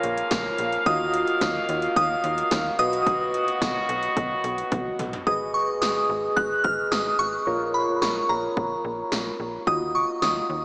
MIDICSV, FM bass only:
0, 0, Header, 1, 2, 480
1, 0, Start_track
1, 0, Key_signature, -6, "minor"
1, 0, Tempo, 550459
1, 753, Time_signature, 4, 2, 24, 8
1, 9286, End_track
2, 0, Start_track
2, 0, Title_t, "FM bass"
2, 0, Program_c, 0, 39
2, 34, Note_on_c, 0, 34, 101
2, 202, Note_off_c, 0, 34, 0
2, 274, Note_on_c, 0, 34, 109
2, 441, Note_off_c, 0, 34, 0
2, 512, Note_on_c, 0, 34, 102
2, 681, Note_off_c, 0, 34, 0
2, 752, Note_on_c, 0, 39, 111
2, 1088, Note_off_c, 0, 39, 0
2, 1232, Note_on_c, 0, 39, 103
2, 1401, Note_off_c, 0, 39, 0
2, 1473, Note_on_c, 0, 39, 109
2, 1641, Note_off_c, 0, 39, 0
2, 1712, Note_on_c, 0, 39, 111
2, 1881, Note_off_c, 0, 39, 0
2, 1953, Note_on_c, 0, 39, 104
2, 2121, Note_off_c, 0, 39, 0
2, 2195, Note_on_c, 0, 39, 114
2, 2362, Note_off_c, 0, 39, 0
2, 2433, Note_on_c, 0, 35, 110
2, 2937, Note_off_c, 0, 35, 0
2, 3154, Note_on_c, 0, 35, 99
2, 3322, Note_off_c, 0, 35, 0
2, 3393, Note_on_c, 0, 35, 101
2, 3561, Note_off_c, 0, 35, 0
2, 3633, Note_on_c, 0, 35, 99
2, 3801, Note_off_c, 0, 35, 0
2, 3873, Note_on_c, 0, 35, 102
2, 4041, Note_off_c, 0, 35, 0
2, 4115, Note_on_c, 0, 35, 111
2, 4282, Note_off_c, 0, 35, 0
2, 4353, Note_on_c, 0, 35, 100
2, 4521, Note_off_c, 0, 35, 0
2, 4594, Note_on_c, 0, 32, 99
2, 4930, Note_off_c, 0, 32, 0
2, 5074, Note_on_c, 0, 32, 100
2, 5242, Note_off_c, 0, 32, 0
2, 5313, Note_on_c, 0, 32, 106
2, 5481, Note_off_c, 0, 32, 0
2, 5553, Note_on_c, 0, 32, 94
2, 5721, Note_off_c, 0, 32, 0
2, 5794, Note_on_c, 0, 32, 98
2, 5962, Note_off_c, 0, 32, 0
2, 6033, Note_on_c, 0, 32, 108
2, 6201, Note_off_c, 0, 32, 0
2, 6273, Note_on_c, 0, 32, 93
2, 6441, Note_off_c, 0, 32, 0
2, 6513, Note_on_c, 0, 34, 98
2, 6849, Note_off_c, 0, 34, 0
2, 6993, Note_on_c, 0, 34, 104
2, 7161, Note_off_c, 0, 34, 0
2, 7233, Note_on_c, 0, 34, 99
2, 7401, Note_off_c, 0, 34, 0
2, 7473, Note_on_c, 0, 34, 90
2, 7641, Note_off_c, 0, 34, 0
2, 7714, Note_on_c, 0, 34, 100
2, 7881, Note_off_c, 0, 34, 0
2, 7954, Note_on_c, 0, 34, 110
2, 8122, Note_off_c, 0, 34, 0
2, 8194, Note_on_c, 0, 34, 101
2, 8361, Note_off_c, 0, 34, 0
2, 8433, Note_on_c, 0, 39, 111
2, 8769, Note_off_c, 0, 39, 0
2, 8913, Note_on_c, 0, 39, 104
2, 9081, Note_off_c, 0, 39, 0
2, 9153, Note_on_c, 0, 39, 101
2, 9286, Note_off_c, 0, 39, 0
2, 9286, End_track
0, 0, End_of_file